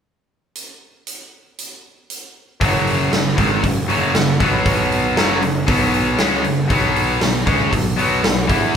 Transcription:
0.55 closed hi-hat
1.07 closed hi-hat
1.58 closed hi-hat
2.10 closed hi-hat
2.60 picked electric bass F#1, distorted electric guitar F#2 C#3 F#3, kick, open hi-hat
2.87 open hi-hat
3.12 picked electric bass F#1, distorted electric guitar F#2 C#3, snare, open hi-hat
3.36 picked electric bass G#1, distorted electric guitar G#2 D#3 G#3, kick, open hi-hat
3.63 picked electric bass F#1, distorted electric guitar F#2 C#3, kick, open hi-hat
3.88 picked electric bass F#1, distorted electric guitar F#2 C#3 F#3, open hi-hat
4.14 picked electric bass F#1, distorted electric guitar F#2 C#3, snare, open hi-hat
4.40 picked electric bass B1, distorted electric guitar B2 F#3 B3, kick, open hi-hat
4.66 kick, open hi-hat
4.92 open hi-hat
5.16 picked electric bass F#1, distorted electric guitar F#2 C#3 F#3, snare, open hi-hat
5.41 picked electric bass F#1, distorted electric guitar F#2 C#3, open hi-hat
5.66 picked electric bass B1, distorted electric guitar B2 F#3 B3, kick, open hi-hat
5.94 open hi-hat
6.18 picked electric bass C#2, distorted electric guitar C#3 G#3 C#4, snare, open hi-hat
6.44 picked electric bass F#1, distorted electric guitar F#2 C#3, open hi-hat
6.68 picked electric bass B1, distorted electric guitar B2 F#3 B3, kick, open hi-hat
6.96 open hi-hat
7.20 picked electric bass B1, distorted electric guitar B2 F#3, snare, open hi-hat
7.46 picked electric bass C#2, distorted electric guitar C#3 G#3 C#4, kick, open hi-hat
7.71 picked electric bass B1, distorted electric guitar B2 F#3, kick, open hi-hat
7.96 picked electric bass B1, distorted electric guitar B2 F#3 B3, open hi-hat
8.22 picked electric bass B1, distorted electric guitar B2 F#3, snare, open hi-hat
8.47 picked electric bass E2, distorted electric guitar E3 B3 E4, kick, open hi-hat

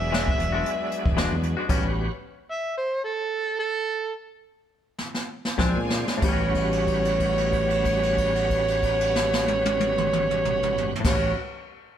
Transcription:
Already playing: fingered electric bass E1, tonewheel organ F#3 G#3 B3 D4, string section G#4 D5 E5, harmonica E5
0.12 clean electric guitar E3 G#3 D4 F#4, snare, closed hi-hat
0.28 kick
0.39 fingered electric bass E1, closed hi-hat
0.52 clean electric guitar G#3 D4 F#4
0.66 closed hi-hat
0.91 closed hi-hat
1.05 fingered electric bass E1, kick
1.17 clean electric guitar E3 G#3 D4 F#4, snare, closed hi-hat
1.32 fingered electric bass E2
1.43 closed hi-hat
1.57 clean electric guitar G#3 D4 F#4
1.68 fingered electric bass A1, clean electric guitar A2 G3 C#4 F#4, tonewheel organ G3 B3 C#4 F#4, string section B4 C#5, kick, closed hi-hat, crash
1.84 fingered electric bass A1
2.51 harmonica E5
2.78 harmonica C5
3.04 harmonica A4
3.59 harmonica A4
4.98 snare
5.14 snare
5.45 snare
5.58 fingered electric bass A#1, clean electric guitar A#2 G#3 C4 D4, tonewheel organ G#3 C4 D4 F4, string section C5 D5 G#5, kick, snare
5.76 fingered electric bass A#2
5.90 snare
6.08 snare
6.18 clean electric guitar A2
6.22 fingered electric bass A1, tonewheel organ G3 B3 C#4 F#4, clean electric guitar G3, string section B4 C#5 F#5, harmonica C#5, kick, crash
6.29 clean electric guitar C#4
6.33 clean electric guitar F#4
6.55 kick, crash
6.72 crash
6.87 kick, crash
7.05 crash
7.20 kick, crash
7.38 crash
7.53 kick, crash
7.70 crash
7.85 kick, crash
8.03 crash
8.18 kick, crash
8.36 crash
8.50 kick, crash
8.68 crash
8.83 kick, crash
9.00 crash
9.16 snare
9.33 snare
9.48 high tom
9.65 high tom
9.80 high tom
9.98 mid tom
10.13 mid tom
10.31 mid tom
10.45 mid tom
10.63 mid tom
10.78 floor tom
10.96 floor tom
11.00 clean electric guitar A2, string section G4 C#5, crash
11.04 fingered electric bass A1, tonewheel organ G3 B3 C#4 F#4, clean electric guitar G3, string section B4 F#5, harmonica C#5, kick, snare
11.11 clean electric guitar C#4
11.15 clean electric guitar F#4

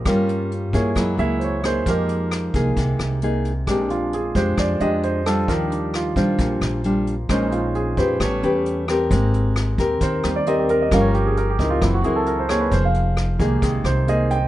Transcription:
Already playing: grand piano G4
0.05 upright bass G2, nylon-string guitar G3 C#4 F4 A#4, grand piano A#3 C#4 F4, kick, cross-stick, closed hi-hat
0.29 closed hi-hat
0.51 closed hi-hat
0.73 upright bass G2, nylon-string guitar A#3 E4 G#4, grand piano C#5, kick, closed hi-hat
0.95 upright bass F#2, nylon-string guitar F#3, grand piano G#3 A#3 E4, kick, cross-stick, closed hi-hat
1.18 upright bass C#2, nylon-string guitar A#3 E4 G#4, grand piano E5, closed hi-hat
1.39 grand piano C5, closed hi-hat
1.44 grand piano C#5
1.64 nylon-string guitar A#3 D#4 G#4, grand piano C5, cross-stick, closed hi-hat
1.86 upright bass F2, nylon-string guitar F3, grand piano G#3 A#3 D#4 G4, kick, closed hi-hat
1.90 grand piano A#4
2.09 closed hi-hat
2.31 cross-stick, closed hi-hat
2.54 upright bass C2, nylon-string guitar A#3 D#4 G#4, kick, closed hi-hat
2.77 upright bass C2, nylon-string guitar C3, kick, closed hi-hat
2.99 upright bass C2, cross-stick, closed hi-hat
3.22 nylon-string guitar A#3 D#4 G#4, closed hi-hat
3.45 closed hi-hat
3.67 upright bass A#1, nylon-string guitar A#2 G#3 D4 G4, grand piano G#3 C4 D4, kick, cross-stick, closed hi-hat
3.90 grand piano F4, closed hi-hat
4.13 grand piano G#4, closed hi-hat
4.35 upright bass F2, nylon-string guitar G#3 D4 G4, grand piano C5, kick, closed hi-hat
4.58 upright bass F2, nylon-string guitar F3, grand piano D5, kick, cross-stick, closed hi-hat
4.80 upright bass F2, nylon-string guitar G#3 D4 G4, grand piano D#5, closed hi-hat
5.03 grand piano C5, closed hi-hat
5.26 nylon-string guitar G3 D4 F4, grand piano A4, cross-stick, closed hi-hat
5.47 upright bass D#2, nylon-string guitar D#3, grand piano F3 G3 D4 A#4, kick, closed hi-hat
5.71 grand piano D4, closed hi-hat
5.94 grand piano F4, cross-stick, closed hi-hat
6.16 upright bass A#1, nylon-string guitar G3 D4 F4, grand piano C5, kick, closed hi-hat
6.39 upright bass A#1, nylon-string guitar A#2, kick, closed hi-hat
6.61 upright bass A#1, cross-stick, closed hi-hat
6.84 nylon-string guitar G3 D4 F4, closed hi-hat
7.07 closed hi-hat
7.29 upright bass A#1, nylon-string guitar A#2 G#3 C#4 D#4, grand piano G#3 C#4 D#4 C5, kick, cross-stick, closed hi-hat
7.52 grand piano F4, closed hi-hat
7.75 grand piano G#4, closed hi-hat
7.97 upright bass F2, nylon-string guitar C#4 G4 B4, grand piano C5, kick, closed hi-hat
8.20 upright bass A1, grand piano G3 B3 C#4 C#5, nylon-string guitar A3, kick, cross-stick, closed hi-hat
8.43 upright bass E2, nylon-string guitar C#4 G4 B4, closed hi-hat
8.66 closed hi-hat
8.88 nylon-string guitar C4 G4 A#4, cross-stick, closed hi-hat
9.11 upright bass G#1, nylon-string guitar G#3, grand piano A#3 C4, kick, closed hi-hat
9.34 closed hi-hat
9.56 cross-stick, closed hi-hat
9.78 upright bass D#2, nylon-string guitar C4 G4 A#4, kick, closed hi-hat
10.01 upright bass D#2, nylon-string guitar D#3, grand piano C5, kick, closed hi-hat
10.24 upright bass D#2, grand piano G3 A#3 C4, cross-stick, closed hi-hat
10.36 grand piano D5
10.46 nylon-string guitar C4 G4 A#4, grand piano D#5, closed hi-hat
10.59 grand piano G4
10.69 grand piano A#4, closed hi-hat
10.82 grand piano D#5
10.91 upright bass G1, grand piano F3 A#3 C#4 F5, nylon-string guitar G3 C#4 F4 A#4, kick, cross-stick, closed hi-hat
11.01 grand piano C#5
11.08 grand piano A#4
11.14 grand piano G4, closed hi-hat
11.27 grand piano G#4
11.37 grand piano A#4, closed hi-hat
11.50 grand piano G4
11.59 upright bass C#2, nylon-string guitar C4 E4 A#4, grand piano D#4, kick, closed hi-hat
11.70 grand piano F4
11.80 upright bass F#1, grand piano E3 A#3 C4 E4, nylon-string guitar F#3, kick, cross-stick, closed hi-hat
11.94 grand piano F#4
12.04 upright bass C#2, nylon-string guitar C4 E4 A#4, grand piano G#4, closed hi-hat
12.16 grand piano A4
12.26 grand piano A#4, closed hi-hat
12.40 grand piano C5
12.49 nylon-string guitar A#3 D#4 G#4, grand piano C#5, cross-stick, closed hi-hat
12.61 grand piano B4
12.71 upright bass F1, nylon-string guitar F3, grand piano C5, kick, closed hi-hat
12.85 grand piano F5
12.94 closed hi-hat
13.17 cross-stick, closed hi-hat
13.39 upright bass C2, grand piano D#3 G#3 A#3 G4, nylon-string guitar A#3 D#4 G#4, kick, closed hi-hat
13.62 upright bass C2, nylon-string guitar C3, grand piano G#4, kick, closed hi-hat
13.84 upright bass C2, grand piano C5, cross-stick, closed hi-hat
14.08 nylon-string guitar A#3 D#4 G#4, grand piano D#5, closed hi-hat
14.30 grand piano G5, closed hi-hat

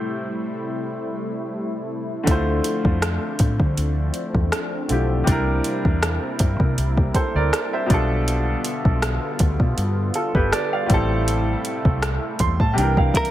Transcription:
Already playing: grand piano A2 A3 E4 G4 C5, analog synth pad C3 G3 A3 E4
2.23 fingered electric bass D2, grand piano D3 A3, analog synth pad F3 C4 D4, kick, closed hi-hat
2.28 grand piano E4 F4 C5
2.64 closed hi-hat
2.85 fingered electric bass F2, kick
3.02 cross-stick, closed hi-hat
3.39 fingered electric bass A2, kick, closed hi-hat
3.60 fingered electric bass D3, kick
3.77 fingered electric bass D2, closed hi-hat
4.14 closed hi-hat
4.35 fingered electric bass E2, kick
4.52 cross-stick, closed hi-hat
4.88 fingered electric bass B1, grand piano D3 A3 E4 F4 G4, closed hi-hat
5.24 fingered electric bass C2, grand piano C3 G3 D4, analog synth pad G3 A#3 E4, kick, closed hi-hat
5.30 grand piano E4 A#4
5.64 closed hi-hat
5.85 fingered electric bass E2, kick
6.03 cross-stick, closed hi-hat
6.39 fingered electric bass G2, kick, closed hi-hat
6.60 fingered electric bass C3, kick
6.78 fingered electric bass C2, closed hi-hat
6.97 kick
7.14 grand piano A4 C5, kick, closed hi-hat
7.35 fingered electric bass D2, grand piano A#4 D5
7.53 cross-stick, closed hi-hat
7.73 grand piano C5 E5
7.86 fingered electric bass B1, grand piano B2 G3 D4, analog synth pad D3 F4, kick, closed hi-hat
7.90 analog synth pad B3, grand piano F4 A4
8.28 closed hi-hat
8.64 closed hi-hat
8.85 fingered electric bass B1, kick
9.02 cross-stick, closed hi-hat
9.39 fingered electric bass D2, kick, closed hi-hat
9.60 fingered electric bass B2, kick
9.78 fingered electric bass G2, closed hi-hat
10.14 grand piano F4 A4, closed hi-hat
10.35 fingered electric bass G1, grand piano G4 B4, kick
10.53 grand piano B4 D5, cross-stick, closed hi-hat
10.73 grand piano D5 F5
10.86 fingered electric bass A1, grand piano A2 G3, analog synth pad C3 G3 A3 E4, kick, closed hi-hat
10.90 grand piano C4 E4 A4
11.28 closed hi-hat
11.65 closed hi-hat
11.85 fingered electric bass C2, kick
12.02 cross-stick, closed hi-hat
12.39 fingered electric bass E2, grand piano C6, kick, closed hi-hat
12.60 fingered electric bass A2, grand piano A5, kick
12.73 fingered electric bass C2, grand piano C3 G3 D4 G5, analog synth pad E3 A#3 D4
12.78 grand piano E3 A#4, closed hi-hat
12.97 grand piano F5, kick
13.14 clean electric guitar A#4, grand piano E5, kick, closed hi-hat
13.25 closed hi-hat

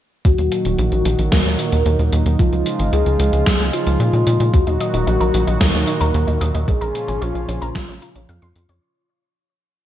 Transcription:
0.24 analog synth bass D#2, analog synth pad A#2 D#3 F#3 D#4 F#4, soft synth lead F#4, kick, closed hi-hat
0.38 analog synth bass D#2, closed hi-hat
0.52 closed hi-hat
0.65 analog synth bass D#1, closed hi-hat
0.79 analog synth bass A#1, closed hi-hat
0.92 analog synth bass A#1, closed hi-hat
1.05 analog synth bass A#1, closed hi-hat
1.19 analog synth bass A#1, closed hi-hat
1.32 analog synth bass D#2, soft synth lead A#4, kick, snare, closed hi-hat
1.45 analog synth bass D#2, closed hi-hat
1.59 closed hi-hat
1.72 analog synth bass D#2, closed hi-hat
1.86 analog synth bass D#2, closed hi-hat
1.99 analog synth bass D#2, closed hi-hat
2.12 analog synth bass D#2, closed hi-hat
2.26 analog synth bass D#2, closed hi-hat
2.39 analog synth bass C#2, analog synth pad C#3 F3 G#3 F4, soft synth lead F4, kick, closed hi-hat
2.53 analog synth bass C#2, closed hi-hat
2.66 closed hi-hat
2.79 analog synth bass G#1, closed hi-hat
2.93 analog synth bass C#2, soft synth lead G#4, closed hi-hat
3.06 analog synth bass C#2, closed hi-hat
3.19 analog synth bass C#2, closed hi-hat
3.33 analog synth bass C#2, closed hi-hat
3.46 analog synth bass C#2, kick, snare, closed hi-hat
3.60 analog synth bass C#2, closed hi-hat
3.73 soft synth lead F4, closed hi-hat
3.87 analog synth bass C#2, closed hi-hat
4.00 analog synth bass A#2, closed hi-hat
4.13 analog synth bass A#2, closed hi-hat
4.27 analog synth bass A#2, closed hi-hat
4.40 analog synth bass A#2, closed hi-hat
4.54 analog synth bass D#2, analog synth pad A#2 D#3 F#3 D#4 F#4, soft synth lead F#4, kick, closed hi-hat
4.67 analog synth bass D#2, synth arpeggio sound D#4, closed hi-hat
4.80 synth arpeggio sound D#5, closed hi-hat
4.94 analog synth bass D#1, synth arpeggio sound D#4, closed hi-hat
5.07 analog synth bass A#1, synth arpeggio sound D#4, closed hi-hat
5.21 analog synth bass A#1, synth arpeggio sound A#4, closed hi-hat
5.34 analog synth bass A#1, closed hi-hat
5.47 analog synth bass A#1, synth arpeggio sound D#4, closed hi-hat
5.61 analog synth bass D#2, soft synth lead A#4, synth arpeggio sound D#5, kick, snare, closed hi-hat
5.74 analog synth bass D#2, synth arpeggio sound D#4, closed hi-hat
5.87 synth arpeggio sound D#4, closed hi-hat
6.01 analog synth bass D#2, synth arpeggio sound A#4, closed hi-hat
6.14 analog synth bass D#2, closed hi-hat
6.27 analog synth bass D#2, synth arpeggio sound D#4, closed hi-hat
6.41 analog synth bass D#2, synth arpeggio sound D#5, closed hi-hat
6.54 analog synth bass D#2, synth arpeggio sound D#4, closed hi-hat
6.68 analog synth bass A#1, analog synth pad C#3 F3 C#4 F4, synth arpeggio sound C#4, soft synth lead G#4, kick, closed hi-hat
6.81 analog synth bass A#1, synth arpeggio sound A#4, closed hi-hat
6.95 closed hi-hat
7.08 analog synth bass G#1, synth arpeggio sound C#4, closed hi-hat
7.22 analog synth bass A#1, soft synth lead F4, synth arpeggio sound C#5, closed hi-hat
7.35 analog synth bass A#1, synth arpeggio sound C#4, closed hi-hat
7.48 analog synth bass A#1, synth arpeggio sound C#4, closed hi-hat
7.62 analog synth bass A#1, synth arpeggio sound A#4, closed hi-hat
7.75 analog synth bass A#1, kick, snare, closed hi-hat
7.88 analog synth bass A#1, synth arpeggio sound C#4, closed hi-hat
8.02 soft synth lead F4, synth arpeggio sound A#4, closed hi-hat
8.16 analog synth bass A#1, synth arpeggio sound C#4, closed hi-hat
8.29 analog synth bass F2, synth arpeggio sound F5, closed hi-hat
8.42 analog synth bass F2, synth arpeggio sound C6, closed hi-hat
8.56 analog synth bass F2, closed hi-hat
8.69 analog synth bass F2, synth arpeggio sound C#5, closed hi-hat

